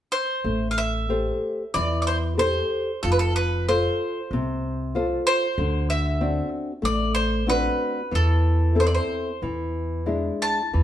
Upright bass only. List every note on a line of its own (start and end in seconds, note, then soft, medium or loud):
0.44 1.29 A1 medium
1.76 2.59 E2 medium
3.04 3.87 F1 medium
4.31 5.13 C2 medium
5.58 6.39 D2 medium
6.83 7.67 A1 medium
8.12 8.97 E2 medium
9.42 10.28 E2 medium
10.74 10.83 E2 medium